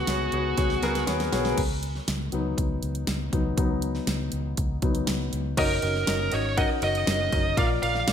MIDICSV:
0, 0, Header, 1, 5, 480
1, 0, Start_track
1, 0, Tempo, 500083
1, 1513, Time_signature, 4, 2, 24, 8
1, 7802, End_track
2, 0, Start_track
2, 0, Title_t, "Lead electric guitar"
2, 0, Program_c, 0, 29
2, 0, Note_on_c, 0, 66, 69
2, 993, Note_off_c, 0, 66, 0
2, 5364, Note_on_c, 0, 70, 91
2, 6085, Note_on_c, 0, 73, 87
2, 6099, Note_off_c, 0, 70, 0
2, 6315, Note_off_c, 0, 73, 0
2, 6319, Note_on_c, 0, 75, 103
2, 6383, Note_off_c, 0, 75, 0
2, 6566, Note_on_c, 0, 75, 96
2, 7274, Note_off_c, 0, 75, 0
2, 7278, Note_on_c, 0, 77, 110
2, 7342, Note_off_c, 0, 77, 0
2, 7512, Note_on_c, 0, 77, 104
2, 7802, Note_off_c, 0, 77, 0
2, 7802, End_track
3, 0, Start_track
3, 0, Title_t, "Grand piano"
3, 0, Program_c, 1, 0
3, 0, Control_c, 1, 64, 127
3, 0, Note_on_c, 1, 44, 55
3, 0, Note_on_c, 1, 59, 64
3, 0, Note_on_c, 1, 66, 56
3, 0, Note_on_c, 1, 68, 62
3, 0, Note_on_c, 1, 73, 70
3, 78, Note_off_c, 1, 59, 0
3, 78, Note_off_c, 1, 66, 0
3, 78, Note_on_c, 1, 59, 73
3, 78, Note_on_c, 1, 66, 69
3, 82, Note_off_c, 1, 68, 0
3, 82, Note_on_c, 1, 68, 70
3, 85, Note_off_c, 1, 73, 0
3, 85, Note_on_c, 1, 73, 87
3, 279, Note_off_c, 1, 44, 0
3, 280, Note_off_c, 1, 59, 0
3, 280, Note_off_c, 1, 66, 0
3, 282, Note_off_c, 1, 68, 0
3, 283, Note_off_c, 1, 73, 0
3, 319, Note_on_c, 1, 59, 74
3, 319, Note_on_c, 1, 73, 87
3, 321, Note_on_c, 1, 68, 72
3, 324, Note_on_c, 1, 66, 74
3, 520, Note_off_c, 1, 59, 0
3, 521, Note_off_c, 1, 73, 0
3, 522, Note_off_c, 1, 68, 0
3, 523, Note_off_c, 1, 66, 0
3, 549, Note_on_c, 1, 59, 79
3, 551, Note_on_c, 1, 68, 74
3, 552, Note_on_c, 1, 66, 75
3, 552, Note_on_c, 1, 73, 95
3, 755, Note_off_c, 1, 59, 0
3, 756, Note_off_c, 1, 68, 0
3, 757, Note_off_c, 1, 66, 0
3, 757, Note_off_c, 1, 73, 0
3, 794, Note_on_c, 1, 59, 107
3, 794, Note_on_c, 1, 66, 91
3, 798, Note_on_c, 1, 68, 96
3, 800, Note_on_c, 1, 70, 123
3, 998, Note_off_c, 1, 59, 0
3, 998, Note_off_c, 1, 66, 0
3, 1000, Note_off_c, 1, 68, 0
3, 1001, Note_off_c, 1, 70, 0
3, 1026, Note_on_c, 1, 59, 105
3, 1027, Note_on_c, 1, 68, 94
3, 1028, Note_on_c, 1, 66, 93
3, 1029, Note_on_c, 1, 73, 109
3, 1234, Note_off_c, 1, 59, 0
3, 1235, Note_off_c, 1, 66, 0
3, 1235, Note_off_c, 1, 68, 0
3, 1235, Note_off_c, 1, 73, 0
3, 1268, Note_on_c, 1, 59, 77
3, 1269, Note_on_c, 1, 66, 76
3, 1270, Note_on_c, 1, 68, 75
3, 1271, Note_on_c, 1, 73, 88
3, 1475, Note_off_c, 1, 59, 0
3, 1475, Note_off_c, 1, 66, 0
3, 1476, Note_off_c, 1, 68, 0
3, 1476, Note_off_c, 1, 73, 0
3, 1524, Control_c, 1, 64, 0
3, 1704, Control_c, 1, 64, 127
3, 2230, Note_on_c, 1, 54, 50
3, 2234, Note_on_c, 1, 59, 45
3, 2241, Note_on_c, 1, 63, 56
3, 2915, Note_off_c, 1, 54, 0
3, 2917, Note_off_c, 1, 59, 0
3, 2921, Note_off_c, 1, 63, 0
3, 3190, Note_on_c, 1, 54, 47
3, 3192, Note_on_c, 1, 59, 42
3, 3198, Note_on_c, 1, 63, 53
3, 3407, Note_off_c, 1, 54, 0
3, 3408, Note_off_c, 1, 59, 0
3, 3412, Note_off_c, 1, 63, 0
3, 3430, Note_on_c, 1, 54, 52
3, 3434, Note_on_c, 1, 59, 48
3, 3443, Note_on_c, 1, 63, 56
3, 4115, Note_off_c, 1, 54, 0
3, 4117, Note_off_c, 1, 59, 0
3, 4122, Note_off_c, 1, 63, 0
3, 4631, Note_on_c, 1, 54, 49
3, 4635, Note_on_c, 1, 59, 43
3, 4638, Note_on_c, 1, 63, 51
3, 4847, Note_off_c, 1, 54, 0
3, 4850, Note_off_c, 1, 59, 0
3, 4851, Note_off_c, 1, 63, 0
3, 5349, Note_on_c, 1, 61, 91
3, 5351, Note_on_c, 1, 63, 82
3, 5351, Note_on_c, 1, 66, 85
3, 5352, Note_on_c, 1, 49, 66
3, 5352, Note_on_c, 1, 70, 78
3, 5356, Note_on_c, 1, 75, 103
3, 5362, Control_c, 1, 64, 0
3, 5515, Control_c, 1, 64, 127
3, 5555, Note_off_c, 1, 61, 0
3, 5556, Note_off_c, 1, 63, 0
3, 5556, Note_off_c, 1, 66, 0
3, 5557, Note_off_c, 1, 70, 0
3, 5558, Note_off_c, 1, 75, 0
3, 5589, Note_on_c, 1, 63, 62
3, 5590, Note_on_c, 1, 61, 70
3, 5590, Note_on_c, 1, 70, 66
3, 5592, Note_on_c, 1, 66, 60
3, 5594, Note_on_c, 1, 75, 77
3, 5795, Note_off_c, 1, 61, 0
3, 5795, Note_off_c, 1, 63, 0
3, 5796, Note_off_c, 1, 70, 0
3, 5797, Note_off_c, 1, 66, 0
3, 5798, Note_off_c, 1, 75, 0
3, 5823, Note_on_c, 1, 61, 69
3, 5824, Note_on_c, 1, 66, 65
3, 5825, Note_on_c, 1, 63, 60
3, 5825, Note_on_c, 1, 70, 64
3, 5829, Note_on_c, 1, 75, 74
3, 6032, Note_off_c, 1, 61, 0
3, 6032, Note_off_c, 1, 66, 0
3, 6033, Note_off_c, 1, 63, 0
3, 6033, Note_off_c, 1, 70, 0
3, 6034, Note_off_c, 1, 49, 0
3, 6035, Note_off_c, 1, 75, 0
3, 6065, Note_on_c, 1, 63, 65
3, 6066, Note_on_c, 1, 61, 74
3, 6068, Note_on_c, 1, 70, 66
3, 6069, Note_on_c, 1, 66, 66
3, 6069, Note_on_c, 1, 75, 79
3, 6273, Note_off_c, 1, 63, 0
3, 6274, Note_off_c, 1, 61, 0
3, 6275, Note_off_c, 1, 66, 0
3, 6275, Note_off_c, 1, 70, 0
3, 6275, Note_off_c, 1, 75, 0
3, 6303, Note_on_c, 1, 63, 91
3, 6305, Note_on_c, 1, 61, 94
3, 6307, Note_on_c, 1, 66, 87
3, 6307, Note_on_c, 1, 70, 92
3, 6309, Note_on_c, 1, 78, 106
3, 6512, Note_off_c, 1, 63, 0
3, 6513, Note_off_c, 1, 61, 0
3, 6514, Note_off_c, 1, 66, 0
3, 6514, Note_off_c, 1, 70, 0
3, 6515, Note_off_c, 1, 78, 0
3, 6546, Note_on_c, 1, 63, 69
3, 6549, Note_on_c, 1, 61, 73
3, 6549, Note_on_c, 1, 70, 66
3, 6551, Note_on_c, 1, 66, 69
3, 6551, Note_on_c, 1, 75, 82
3, 6753, Note_off_c, 1, 63, 0
3, 6755, Note_off_c, 1, 61, 0
3, 6755, Note_off_c, 1, 70, 0
3, 6756, Note_off_c, 1, 66, 0
3, 6756, Note_off_c, 1, 75, 0
3, 6777, Note_on_c, 1, 61, 73
3, 6779, Note_on_c, 1, 70, 66
3, 6782, Note_on_c, 1, 66, 66
3, 6783, Note_on_c, 1, 63, 65
3, 6784, Note_on_c, 1, 75, 79
3, 6989, Note_off_c, 1, 61, 0
3, 6990, Note_off_c, 1, 70, 0
3, 6991, Note_off_c, 1, 66, 0
3, 6992, Note_off_c, 1, 63, 0
3, 6992, Note_off_c, 1, 75, 0
3, 7031, Note_on_c, 1, 70, 69
3, 7032, Note_on_c, 1, 61, 75
3, 7032, Note_on_c, 1, 63, 66
3, 7032, Note_on_c, 1, 66, 68
3, 7032, Note_on_c, 1, 75, 86
3, 7236, Note_off_c, 1, 61, 0
3, 7236, Note_off_c, 1, 63, 0
3, 7236, Note_off_c, 1, 66, 0
3, 7236, Note_off_c, 1, 70, 0
3, 7236, Note_off_c, 1, 75, 0
3, 7270, Note_on_c, 1, 65, 92
3, 7271, Note_on_c, 1, 70, 91
3, 7272, Note_on_c, 1, 46, 64
3, 7274, Note_on_c, 1, 53, 63
3, 7275, Note_on_c, 1, 74, 105
3, 7283, Control_c, 1, 64, 0
3, 7449, Control_c, 1, 64, 127
3, 7476, Note_off_c, 1, 65, 0
3, 7476, Note_off_c, 1, 70, 0
3, 7478, Note_off_c, 1, 74, 0
3, 7512, Note_on_c, 1, 65, 72
3, 7512, Note_on_c, 1, 70, 64
3, 7513, Note_on_c, 1, 74, 76
3, 7716, Note_off_c, 1, 65, 0
3, 7716, Note_off_c, 1, 70, 0
3, 7717, Note_off_c, 1, 74, 0
3, 7748, Note_on_c, 1, 65, 73
3, 7751, Note_on_c, 1, 70, 64
3, 7755, Note_on_c, 1, 74, 77
3, 7802, Note_off_c, 1, 46, 0
3, 7802, Note_off_c, 1, 53, 0
3, 7802, Note_off_c, 1, 65, 0
3, 7802, Note_off_c, 1, 70, 0
3, 7802, Note_off_c, 1, 74, 0
3, 7802, End_track
4, 0, Start_track
4, 0, Title_t, "Fingered electric bass"
4, 0, Program_c, 2, 33
4, 72, Note_on_c, 2, 37, 89
4, 269, Note_off_c, 2, 37, 0
4, 313, Note_on_c, 2, 37, 91
4, 509, Note_off_c, 2, 37, 0
4, 554, Note_on_c, 2, 37, 86
4, 750, Note_off_c, 2, 37, 0
4, 787, Note_on_c, 2, 37, 93
4, 986, Note_off_c, 2, 37, 0
4, 1030, Note_on_c, 2, 39, 83
4, 1228, Note_off_c, 2, 39, 0
4, 1274, Note_on_c, 2, 35, 84
4, 1470, Note_off_c, 2, 35, 0
4, 1514, Note_on_c, 2, 37, 92
4, 1907, Note_off_c, 2, 37, 0
4, 1996, Note_on_c, 2, 37, 96
4, 2192, Note_off_c, 2, 37, 0
4, 2234, Note_on_c, 2, 37, 86
4, 2430, Note_off_c, 2, 37, 0
4, 2476, Note_on_c, 2, 37, 82
4, 2671, Note_off_c, 2, 37, 0
4, 2717, Note_on_c, 2, 37, 92
4, 2912, Note_off_c, 2, 37, 0
4, 2954, Note_on_c, 2, 37, 94
4, 3150, Note_off_c, 2, 37, 0
4, 3195, Note_on_c, 2, 37, 89
4, 3391, Note_off_c, 2, 37, 0
4, 3432, Note_on_c, 2, 37, 90
4, 3826, Note_off_c, 2, 37, 0
4, 3913, Note_on_c, 2, 37, 95
4, 4109, Note_off_c, 2, 37, 0
4, 4155, Note_on_c, 2, 37, 85
4, 4351, Note_off_c, 2, 37, 0
4, 4395, Note_on_c, 2, 37, 91
4, 4591, Note_off_c, 2, 37, 0
4, 4631, Note_on_c, 2, 37, 93
4, 4828, Note_off_c, 2, 37, 0
4, 4877, Note_on_c, 2, 37, 83
4, 5072, Note_off_c, 2, 37, 0
4, 5116, Note_on_c, 2, 37, 84
4, 5311, Note_off_c, 2, 37, 0
4, 5350, Note_on_c, 2, 30, 106
4, 5547, Note_off_c, 2, 30, 0
4, 5594, Note_on_c, 2, 30, 92
4, 5790, Note_off_c, 2, 30, 0
4, 5839, Note_on_c, 2, 30, 102
4, 6033, Note_off_c, 2, 30, 0
4, 6076, Note_on_c, 2, 32, 90
4, 6369, Note_off_c, 2, 32, 0
4, 6549, Note_on_c, 2, 30, 87
4, 6747, Note_off_c, 2, 30, 0
4, 6791, Note_on_c, 2, 30, 100
4, 6988, Note_off_c, 2, 30, 0
4, 7032, Note_on_c, 2, 30, 101
4, 7229, Note_off_c, 2, 30, 0
4, 7269, Note_on_c, 2, 34, 104
4, 7467, Note_off_c, 2, 34, 0
4, 7511, Note_on_c, 2, 34, 96
4, 7708, Note_off_c, 2, 34, 0
4, 7753, Note_on_c, 2, 34, 96
4, 7802, Note_off_c, 2, 34, 0
4, 7802, End_track
5, 0, Start_track
5, 0, Title_t, "Drums"
5, 71, Note_on_c, 9, 38, 95
5, 71, Note_on_c, 9, 42, 83
5, 167, Note_off_c, 9, 38, 0
5, 167, Note_off_c, 9, 42, 0
5, 308, Note_on_c, 9, 42, 62
5, 404, Note_off_c, 9, 42, 0
5, 550, Note_on_c, 9, 38, 48
5, 552, Note_on_c, 9, 42, 85
5, 554, Note_on_c, 9, 36, 84
5, 646, Note_off_c, 9, 38, 0
5, 648, Note_off_c, 9, 42, 0
5, 650, Note_off_c, 9, 36, 0
5, 672, Note_on_c, 9, 38, 51
5, 768, Note_off_c, 9, 38, 0
5, 793, Note_on_c, 9, 42, 63
5, 795, Note_on_c, 9, 38, 62
5, 889, Note_off_c, 9, 42, 0
5, 891, Note_off_c, 9, 38, 0
5, 915, Note_on_c, 9, 38, 57
5, 915, Note_on_c, 9, 42, 57
5, 1011, Note_off_c, 9, 38, 0
5, 1011, Note_off_c, 9, 42, 0
5, 1030, Note_on_c, 9, 42, 73
5, 1031, Note_on_c, 9, 38, 78
5, 1126, Note_off_c, 9, 42, 0
5, 1127, Note_off_c, 9, 38, 0
5, 1152, Note_on_c, 9, 38, 68
5, 1152, Note_on_c, 9, 42, 46
5, 1248, Note_off_c, 9, 38, 0
5, 1248, Note_off_c, 9, 42, 0
5, 1272, Note_on_c, 9, 38, 84
5, 1274, Note_on_c, 9, 46, 63
5, 1367, Note_off_c, 9, 38, 0
5, 1370, Note_off_c, 9, 46, 0
5, 1391, Note_on_c, 9, 38, 78
5, 1487, Note_off_c, 9, 38, 0
5, 1512, Note_on_c, 9, 36, 99
5, 1512, Note_on_c, 9, 49, 81
5, 1513, Note_on_c, 9, 42, 75
5, 1608, Note_off_c, 9, 36, 0
5, 1608, Note_off_c, 9, 49, 0
5, 1609, Note_off_c, 9, 42, 0
5, 1754, Note_on_c, 9, 42, 65
5, 1850, Note_off_c, 9, 42, 0
5, 1876, Note_on_c, 9, 38, 28
5, 1972, Note_off_c, 9, 38, 0
5, 1994, Note_on_c, 9, 42, 86
5, 1995, Note_on_c, 9, 38, 93
5, 2090, Note_off_c, 9, 42, 0
5, 2091, Note_off_c, 9, 38, 0
5, 2229, Note_on_c, 9, 42, 61
5, 2325, Note_off_c, 9, 42, 0
5, 2474, Note_on_c, 9, 36, 83
5, 2477, Note_on_c, 9, 42, 85
5, 2570, Note_off_c, 9, 36, 0
5, 2573, Note_off_c, 9, 42, 0
5, 2712, Note_on_c, 9, 42, 65
5, 2808, Note_off_c, 9, 42, 0
5, 2831, Note_on_c, 9, 42, 53
5, 2927, Note_off_c, 9, 42, 0
5, 2949, Note_on_c, 9, 42, 75
5, 2950, Note_on_c, 9, 38, 99
5, 3045, Note_off_c, 9, 42, 0
5, 3046, Note_off_c, 9, 38, 0
5, 3194, Note_on_c, 9, 36, 88
5, 3194, Note_on_c, 9, 42, 60
5, 3290, Note_off_c, 9, 36, 0
5, 3290, Note_off_c, 9, 42, 0
5, 3431, Note_on_c, 9, 36, 100
5, 3432, Note_on_c, 9, 42, 80
5, 3527, Note_off_c, 9, 36, 0
5, 3528, Note_off_c, 9, 42, 0
5, 3669, Note_on_c, 9, 42, 70
5, 3765, Note_off_c, 9, 42, 0
5, 3790, Note_on_c, 9, 38, 29
5, 3886, Note_off_c, 9, 38, 0
5, 3909, Note_on_c, 9, 42, 81
5, 3910, Note_on_c, 9, 38, 97
5, 4005, Note_off_c, 9, 42, 0
5, 4006, Note_off_c, 9, 38, 0
5, 4144, Note_on_c, 9, 42, 67
5, 4240, Note_off_c, 9, 42, 0
5, 4390, Note_on_c, 9, 42, 91
5, 4393, Note_on_c, 9, 36, 84
5, 4486, Note_off_c, 9, 42, 0
5, 4489, Note_off_c, 9, 36, 0
5, 4628, Note_on_c, 9, 42, 65
5, 4630, Note_on_c, 9, 36, 80
5, 4724, Note_off_c, 9, 42, 0
5, 4726, Note_off_c, 9, 36, 0
5, 4748, Note_on_c, 9, 42, 53
5, 4844, Note_off_c, 9, 42, 0
5, 4868, Note_on_c, 9, 42, 73
5, 4869, Note_on_c, 9, 38, 105
5, 4964, Note_off_c, 9, 38, 0
5, 4964, Note_off_c, 9, 42, 0
5, 5113, Note_on_c, 9, 42, 64
5, 5209, Note_off_c, 9, 42, 0
5, 5350, Note_on_c, 9, 36, 106
5, 5351, Note_on_c, 9, 49, 95
5, 5352, Note_on_c, 9, 51, 65
5, 5446, Note_off_c, 9, 36, 0
5, 5447, Note_off_c, 9, 49, 0
5, 5448, Note_off_c, 9, 51, 0
5, 5590, Note_on_c, 9, 51, 56
5, 5686, Note_off_c, 9, 51, 0
5, 5712, Note_on_c, 9, 38, 32
5, 5808, Note_off_c, 9, 38, 0
5, 5829, Note_on_c, 9, 51, 78
5, 5830, Note_on_c, 9, 38, 98
5, 5925, Note_off_c, 9, 51, 0
5, 5926, Note_off_c, 9, 38, 0
5, 6062, Note_on_c, 9, 51, 59
5, 6158, Note_off_c, 9, 51, 0
5, 6311, Note_on_c, 9, 36, 90
5, 6312, Note_on_c, 9, 51, 80
5, 6407, Note_off_c, 9, 36, 0
5, 6408, Note_off_c, 9, 51, 0
5, 6546, Note_on_c, 9, 51, 58
5, 6642, Note_off_c, 9, 51, 0
5, 6672, Note_on_c, 9, 51, 46
5, 6768, Note_off_c, 9, 51, 0
5, 6789, Note_on_c, 9, 51, 67
5, 6790, Note_on_c, 9, 38, 110
5, 6885, Note_off_c, 9, 51, 0
5, 6886, Note_off_c, 9, 38, 0
5, 7031, Note_on_c, 9, 36, 88
5, 7031, Note_on_c, 9, 51, 53
5, 7127, Note_off_c, 9, 36, 0
5, 7127, Note_off_c, 9, 51, 0
5, 7269, Note_on_c, 9, 36, 108
5, 7271, Note_on_c, 9, 51, 66
5, 7365, Note_off_c, 9, 36, 0
5, 7367, Note_off_c, 9, 51, 0
5, 7514, Note_on_c, 9, 51, 57
5, 7610, Note_off_c, 9, 51, 0
5, 7633, Note_on_c, 9, 38, 33
5, 7729, Note_off_c, 9, 38, 0
5, 7751, Note_on_c, 9, 51, 76
5, 7752, Note_on_c, 9, 38, 109
5, 7802, Note_off_c, 9, 38, 0
5, 7802, Note_off_c, 9, 51, 0
5, 7802, End_track
0, 0, End_of_file